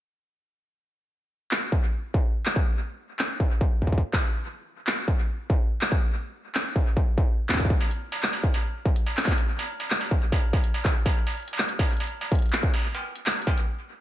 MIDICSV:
0, 0, Header, 1, 3, 480
1, 0, Start_track
1, 0, Tempo, 419580
1, 1250, Time_signature, 4, 2, 24, 8
1, 16026, End_track
2, 0, Start_track
2, 0, Title_t, "Struck metal"
2, 8931, Note_on_c, 9, 76, 47
2, 9045, Note_off_c, 9, 76, 0
2, 9291, Note_on_c, 9, 76, 73
2, 9405, Note_off_c, 9, 76, 0
2, 9531, Note_on_c, 9, 76, 47
2, 9646, Note_off_c, 9, 76, 0
2, 9771, Note_on_c, 9, 76, 47
2, 9885, Note_off_c, 9, 76, 0
2, 10371, Note_on_c, 9, 76, 48
2, 10485, Note_off_c, 9, 76, 0
2, 10611, Note_on_c, 9, 76, 46
2, 10725, Note_off_c, 9, 76, 0
2, 10971, Note_on_c, 9, 76, 72
2, 11085, Note_off_c, 9, 76, 0
2, 11211, Note_on_c, 9, 76, 49
2, 11325, Note_off_c, 9, 76, 0
2, 11450, Note_on_c, 9, 76, 50
2, 11565, Note_off_c, 9, 76, 0
2, 11810, Note_on_c, 9, 76, 76
2, 11925, Note_off_c, 9, 76, 0
2, 12050, Note_on_c, 9, 76, 49
2, 12165, Note_off_c, 9, 76, 0
2, 12290, Note_on_c, 9, 76, 49
2, 12405, Note_off_c, 9, 76, 0
2, 12650, Note_on_c, 9, 76, 75
2, 12764, Note_off_c, 9, 76, 0
2, 12890, Note_on_c, 9, 76, 51
2, 13005, Note_off_c, 9, 76, 0
2, 13191, Note_on_c, 9, 76, 51
2, 13305, Note_off_c, 9, 76, 0
2, 13491, Note_on_c, 9, 76, 80
2, 13605, Note_off_c, 9, 76, 0
2, 13731, Note_on_c, 9, 76, 51
2, 13845, Note_off_c, 9, 76, 0
2, 13971, Note_on_c, 9, 76, 50
2, 14085, Note_off_c, 9, 76, 0
2, 14571, Note_on_c, 9, 76, 51
2, 14601, Note_off_c, 9, 76, 0
2, 14601, Note_on_c, 9, 76, 42
2, 14631, Note_off_c, 9, 76, 0
2, 14631, Note_on_c, 9, 76, 34
2, 14661, Note_off_c, 9, 76, 0
2, 14661, Note_on_c, 9, 76, 27
2, 14691, Note_off_c, 9, 76, 0
2, 14691, Note_on_c, 9, 76, 22
2, 14721, Note_off_c, 9, 76, 0
2, 14721, Note_on_c, 9, 76, 18
2, 14751, Note_off_c, 9, 76, 0
2, 14751, Note_on_c, 9, 76, 15
2, 14781, Note_off_c, 9, 76, 0
2, 14781, Note_on_c, 9, 76, 12
2, 14811, Note_off_c, 9, 76, 0
2, 14811, Note_on_c, 9, 76, 52
2, 14925, Note_off_c, 9, 76, 0
2, 15171, Note_on_c, 9, 76, 78
2, 15285, Note_off_c, 9, 76, 0
2, 15410, Note_on_c, 9, 76, 55
2, 15525, Note_off_c, 9, 76, 0
2, 16026, End_track
3, 0, Start_track
3, 0, Title_t, "Drums"
3, 1730, Note_on_c, 9, 39, 110
3, 1845, Note_off_c, 9, 39, 0
3, 1970, Note_on_c, 9, 36, 97
3, 2085, Note_off_c, 9, 36, 0
3, 2451, Note_on_c, 9, 36, 104
3, 2565, Note_off_c, 9, 36, 0
3, 2810, Note_on_c, 9, 39, 111
3, 2925, Note_off_c, 9, 39, 0
3, 2930, Note_on_c, 9, 36, 110
3, 3045, Note_off_c, 9, 36, 0
3, 3650, Note_on_c, 9, 39, 116
3, 3764, Note_off_c, 9, 39, 0
3, 3890, Note_on_c, 9, 36, 97
3, 4004, Note_off_c, 9, 36, 0
3, 4130, Note_on_c, 9, 36, 102
3, 4244, Note_off_c, 9, 36, 0
3, 4370, Note_on_c, 9, 36, 50
3, 4430, Note_off_c, 9, 36, 0
3, 4430, Note_on_c, 9, 36, 65
3, 4490, Note_off_c, 9, 36, 0
3, 4490, Note_on_c, 9, 36, 79
3, 4550, Note_off_c, 9, 36, 0
3, 4550, Note_on_c, 9, 36, 96
3, 4664, Note_off_c, 9, 36, 0
3, 4730, Note_on_c, 9, 36, 98
3, 4730, Note_on_c, 9, 39, 114
3, 4844, Note_off_c, 9, 36, 0
3, 4844, Note_off_c, 9, 39, 0
3, 5570, Note_on_c, 9, 39, 117
3, 5685, Note_off_c, 9, 39, 0
3, 5810, Note_on_c, 9, 36, 100
3, 5925, Note_off_c, 9, 36, 0
3, 6290, Note_on_c, 9, 36, 117
3, 6405, Note_off_c, 9, 36, 0
3, 6650, Note_on_c, 9, 39, 117
3, 6765, Note_off_c, 9, 39, 0
3, 6770, Note_on_c, 9, 36, 120
3, 6885, Note_off_c, 9, 36, 0
3, 7490, Note_on_c, 9, 39, 113
3, 7605, Note_off_c, 9, 39, 0
3, 7731, Note_on_c, 9, 36, 102
3, 7845, Note_off_c, 9, 36, 0
3, 7970, Note_on_c, 9, 36, 103
3, 8085, Note_off_c, 9, 36, 0
3, 8211, Note_on_c, 9, 36, 116
3, 8325, Note_off_c, 9, 36, 0
3, 8571, Note_on_c, 9, 36, 47
3, 8571, Note_on_c, 9, 39, 113
3, 8611, Note_off_c, 9, 39, 0
3, 8611, Note_on_c, 9, 39, 90
3, 8631, Note_off_c, 9, 36, 0
3, 8631, Note_on_c, 9, 36, 58
3, 8652, Note_off_c, 9, 39, 0
3, 8652, Note_on_c, 9, 39, 74
3, 8691, Note_off_c, 9, 36, 0
3, 8691, Note_on_c, 9, 36, 74
3, 8751, Note_off_c, 9, 36, 0
3, 8751, Note_on_c, 9, 36, 88
3, 8766, Note_off_c, 9, 39, 0
3, 8811, Note_off_c, 9, 36, 0
3, 8811, Note_on_c, 9, 36, 113
3, 8925, Note_off_c, 9, 36, 0
3, 9051, Note_on_c, 9, 42, 47
3, 9165, Note_off_c, 9, 42, 0
3, 9291, Note_on_c, 9, 42, 62
3, 9405, Note_off_c, 9, 42, 0
3, 9411, Note_on_c, 9, 39, 111
3, 9525, Note_off_c, 9, 39, 0
3, 9531, Note_on_c, 9, 42, 47
3, 9646, Note_off_c, 9, 42, 0
3, 9651, Note_on_c, 9, 36, 97
3, 9765, Note_off_c, 9, 36, 0
3, 9771, Note_on_c, 9, 42, 58
3, 9885, Note_off_c, 9, 42, 0
3, 10130, Note_on_c, 9, 36, 108
3, 10245, Note_off_c, 9, 36, 0
3, 10251, Note_on_c, 9, 42, 61
3, 10365, Note_off_c, 9, 42, 0
3, 10491, Note_on_c, 9, 39, 108
3, 10571, Note_off_c, 9, 39, 0
3, 10571, Note_on_c, 9, 39, 90
3, 10610, Note_on_c, 9, 36, 117
3, 10651, Note_off_c, 9, 39, 0
3, 10651, Note_on_c, 9, 39, 70
3, 10725, Note_off_c, 9, 36, 0
3, 10731, Note_on_c, 9, 42, 62
3, 10766, Note_off_c, 9, 39, 0
3, 10845, Note_off_c, 9, 42, 0
3, 10971, Note_on_c, 9, 42, 45
3, 11085, Note_off_c, 9, 42, 0
3, 11211, Note_on_c, 9, 42, 59
3, 11325, Note_off_c, 9, 42, 0
3, 11330, Note_on_c, 9, 39, 109
3, 11444, Note_off_c, 9, 39, 0
3, 11450, Note_on_c, 9, 42, 46
3, 11565, Note_off_c, 9, 42, 0
3, 11570, Note_on_c, 9, 36, 92
3, 11684, Note_off_c, 9, 36, 0
3, 11690, Note_on_c, 9, 42, 59
3, 11805, Note_off_c, 9, 42, 0
3, 11810, Note_on_c, 9, 36, 97
3, 11924, Note_off_c, 9, 36, 0
3, 12050, Note_on_c, 9, 36, 111
3, 12164, Note_off_c, 9, 36, 0
3, 12170, Note_on_c, 9, 42, 61
3, 12284, Note_off_c, 9, 42, 0
3, 12410, Note_on_c, 9, 36, 98
3, 12410, Note_on_c, 9, 39, 106
3, 12524, Note_off_c, 9, 36, 0
3, 12524, Note_off_c, 9, 39, 0
3, 12650, Note_on_c, 9, 36, 108
3, 12650, Note_on_c, 9, 42, 62
3, 12764, Note_off_c, 9, 42, 0
3, 12765, Note_off_c, 9, 36, 0
3, 12890, Note_on_c, 9, 42, 45
3, 12920, Note_off_c, 9, 42, 0
3, 12920, Note_on_c, 9, 42, 39
3, 12950, Note_off_c, 9, 42, 0
3, 12950, Note_on_c, 9, 42, 30
3, 12980, Note_off_c, 9, 42, 0
3, 12980, Note_on_c, 9, 42, 26
3, 13011, Note_off_c, 9, 42, 0
3, 13011, Note_on_c, 9, 42, 20
3, 13041, Note_off_c, 9, 42, 0
3, 13041, Note_on_c, 9, 42, 17
3, 13070, Note_off_c, 9, 42, 0
3, 13070, Note_on_c, 9, 42, 14
3, 13101, Note_off_c, 9, 42, 0
3, 13101, Note_on_c, 9, 42, 11
3, 13131, Note_off_c, 9, 42, 0
3, 13131, Note_on_c, 9, 42, 61
3, 13245, Note_off_c, 9, 42, 0
3, 13251, Note_on_c, 9, 39, 110
3, 13365, Note_off_c, 9, 39, 0
3, 13371, Note_on_c, 9, 42, 47
3, 13485, Note_off_c, 9, 42, 0
3, 13490, Note_on_c, 9, 36, 91
3, 13605, Note_off_c, 9, 36, 0
3, 13611, Note_on_c, 9, 42, 28
3, 13651, Note_off_c, 9, 42, 0
3, 13651, Note_on_c, 9, 42, 32
3, 13691, Note_off_c, 9, 42, 0
3, 13691, Note_on_c, 9, 42, 37
3, 13731, Note_off_c, 9, 42, 0
3, 13731, Note_on_c, 9, 42, 43
3, 13771, Note_off_c, 9, 42, 0
3, 13771, Note_on_c, 9, 42, 49
3, 13811, Note_off_c, 9, 42, 0
3, 13811, Note_on_c, 9, 42, 55
3, 13925, Note_off_c, 9, 42, 0
3, 14091, Note_on_c, 9, 36, 114
3, 14091, Note_on_c, 9, 42, 62
3, 14131, Note_off_c, 9, 42, 0
3, 14131, Note_on_c, 9, 42, 48
3, 14171, Note_off_c, 9, 42, 0
3, 14171, Note_on_c, 9, 42, 40
3, 14205, Note_off_c, 9, 36, 0
3, 14211, Note_off_c, 9, 42, 0
3, 14211, Note_on_c, 9, 42, 31
3, 14251, Note_off_c, 9, 42, 0
3, 14251, Note_on_c, 9, 42, 26
3, 14291, Note_off_c, 9, 42, 0
3, 14291, Note_on_c, 9, 42, 21
3, 14331, Note_on_c, 9, 39, 111
3, 14405, Note_off_c, 9, 42, 0
3, 14445, Note_off_c, 9, 39, 0
3, 14451, Note_on_c, 9, 36, 110
3, 14565, Note_off_c, 9, 36, 0
3, 14571, Note_on_c, 9, 42, 63
3, 14686, Note_off_c, 9, 42, 0
3, 14811, Note_on_c, 9, 42, 51
3, 14925, Note_off_c, 9, 42, 0
3, 15050, Note_on_c, 9, 42, 64
3, 15165, Note_off_c, 9, 42, 0
3, 15171, Note_on_c, 9, 39, 109
3, 15285, Note_off_c, 9, 39, 0
3, 15351, Note_on_c, 9, 42, 50
3, 15411, Note_on_c, 9, 36, 93
3, 15465, Note_off_c, 9, 42, 0
3, 15525, Note_off_c, 9, 36, 0
3, 15531, Note_on_c, 9, 42, 64
3, 15645, Note_off_c, 9, 42, 0
3, 16026, End_track
0, 0, End_of_file